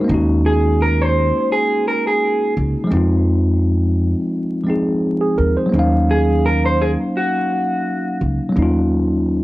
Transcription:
Already playing: A#4
0.01 G#3 A#3
0.08 D#2 C#4 D#4
0.14 F#4
0.46 G#4
0.82 A#4
1.02 C5
1.52 G#4
1.88 A#4
2.07 G#4
2.57 C#2
2.84 F3 G#3
2.91 F2 C4 D#4
2.97 F4
4.64 F3 G#3 C4
4.69 D#4 G#4
5.21 G#4
5.38 D#2 A#4
5.57 C5
5.66 F#3 A#3
5.72 D#2 C#4 D#4
5.79 F5
6.11 G#4
6.46 A#4
6.65 C5
6.81 G#4
7.17 F#4
8.21 C#2
8.49 F#3 A#3
8.56 D#2 C#4 D#4
8.62 F4

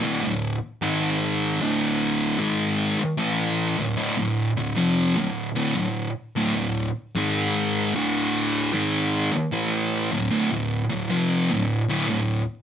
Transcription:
0.03 D2 A2
0.23 D2 A2
0.82 G#2 D#3 G#3
1.61 D2 A2 D3
2.39 G#2 D#3 G#3
2.99 muted distorted electric guitar stroke
3.17 A2 E3 A3
3.77 D2 A2
3.97 D2 A2
4.17 D2 A2
4.57 D2 A2
4.77 F2 C3 F3
5.16 D2 A2
5.55 D2 A2
5.76 D2 A2
6.36 D2 A2
6.55 D2 A2
7.15 G#2 D#3 G#3
7.94 D2 A2 D3
8.73 G#2 D#3 G#3
9.33 muted distorted electric guitar stroke
9.52 A2 E3 A3
10.12 D2 A2
10.31 D2 A2
10.52 D2 A2
10.90 D2 A2
11.10 F2 C3 F3
11.51 D2 A2
11.89 D2 A2
12.09 D2 A2

